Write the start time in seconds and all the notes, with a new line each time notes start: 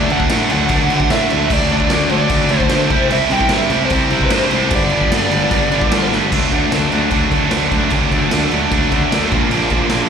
Already playing: F#3 A3 D4 D5
0.10 D2 D3 F#3 A3 D4 F#5, crash
0.20 kick
0.30 A2 D3 F#3 A3 D4, snare, crash
0.50 D2 D3 F#3 A3 D4 F#5, crash
0.69 D2 D3 F#3 A3 D4, kick, crash
0.90 D2 D3 F#3 A3 D4, crash
1.00 kick
1.10 A2 D3 F#3 A3 D4 E5, snare, crash
1.30 D2 D3 F#3 A3 D4, crash
1.50 D2 D3 F#3 A3 D4 D5, kick, crash
1.70 D3 F#3 A3 D4 D5, crash
1.80 kick
1.90 D2 D3 F#3 A3 D4 D5, snare, crash
2.10 D2 D3 F#3 A3 D4 D5, crash
2.29 D2 D3 F#3 A3 D4, kick, crash
2.49 D2 D3 F#3 A3 D4, crash
2.59 C5, kick
2.70 D2 D3 F#3 A3 D4 C5, snare, crash
2.90 C2 C3 G3 C4 E4, kick, crash
3.11 C2 C3 G3 C4 E4 E5, crash
3.30 C2 C3 G3 C4 E4 G5, crash
3.41 kick
3.49 G2 C3 G3 C4 E4, snare, crash
3.54 E5
3.70 C2 C3 G3 C4 E4, crash
3.85 C5
3.90 C2 C3 G3 C4 E4, kick, crash
4.10 C2 C3 G3 C4 E4, crash
4.21 B4, kick
4.31 G2 C3 G3 C4 E4, snare, crash
4.36 C5
4.50 C2 C3 G3 C4 E4, crash
4.70 G1 G2 D3 G3 B3 D4, kick, crash
4.75 D5
4.90 G2 D3 G3 B3 D4, crash
5.01 kick
5.10 G1 G2 D3 G3 B3 D4, snare, crash
5.30 G1 G2 D3 G3 B3 D4, crash
5.51 G1 G2 D3 G3 B3 D4, kick, crash
5.71 G1 G2 D3 G3 B3 D4, crash
5.82 kick
5.91 G1 G2 D3 G3 B3 D4, snare, crash
6.11 G1 G2 D3 G3 B3 D4, snare
6.31 D2 D3 F#3 A3 D4, kick, crash
6.51 D2 D3 F#3 A3 D4, kick, crash
6.72 D2 D3 F#3 A3 D4, snare, crash
6.92 D2 D3 F#3 A3 D4, crash
7.11 D2 D3 F#3 A3 D4, kick, crash
7.32 D2 D3 F#3 A3 D4, kick, crash
7.51 D2 D3 F#3 A3 D4, snare, crash
7.72 D2 D3 F#3 A3 D4, kick, crash
7.90 D2 D3 F#3 A3 D4, kick, crash
8.11 D2 D3 F#3 A3 D4, kick, crash
8.31 D2 D3 F#3 A3 D4, snare, crash
8.51 D2 D3 F#3 A3 D4, crash
8.72 D2 D3 F#3 A3 D4, kick, crash
8.92 D2 D3 F#3 A3 D4, kick, crash
9.12 D2 D3 F#3 A3 D4, snare, crash
9.31 A#1 A#2 D3 F3 A#3 D4, kick, crash
9.51 A#1 A#2 D3 F3 A#3 D4, crash
9.70 A#1 A#2 D3 F3 A#3 D4, kick, crash
9.90 A#1 A#2 D3 F3 A#3 D4, snare, crash